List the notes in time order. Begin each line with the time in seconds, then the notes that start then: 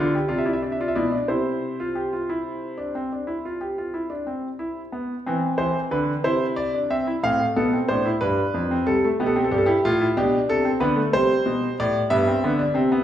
Already playing: D3 F4 B4
0.15 G4
0.28 C3 F4 D5
0.38 E5
0.46 E4 D5
0.53 E5
0.62 D4 D5
0.72 E5
0.81 F4 D5
0.88 E5
0.95 B2 E4 D5
1.12 D4
1.28 C3 E4 C5
1.80 F4
1.95 G4
2.13 F4
2.29 E4
2.78 D4
2.95 C4
3.13 D4
3.27 E4
3.45 F4
3.61 G4
3.78 F4
3.94 E4
4.10 D4
4.27 C4
4.59 E4
4.92 B3
5.26 E3 C4
5.58 E3 C5
5.91 D3 B4
6.24 C3 E4 C5
6.56 D5
6.74 D4
6.90 C4 E5
7.07 E4
7.23 A2 C4 F5
7.39 A3
7.56 B2 B3 A4
7.73 C4
7.88 A2 D4 C5
8.06 E4
8.21 G2 D4 B4
8.54 F2
8.71 C4
8.86 C3 G3 A4
9.05 A3
9.20 B2 B3 G4
9.26 A4
9.36 C4 G4
9.44 A4
9.51 G2 D4 G4
9.58 A4
9.66 E4 G4
9.85 A2 F4
10.01 E4
10.17 B2 D4 G4
10.49 C3 A4
10.65 C4
10.80 D3 B3 B4
10.96 A3
11.13 C3 G3 C5
11.46 B2
11.80 A2 D5
12.10 G2 B3 E5
12.28 C4
12.44 D3 B3
12.59 D4
12.74 C3 C4
12.92 B3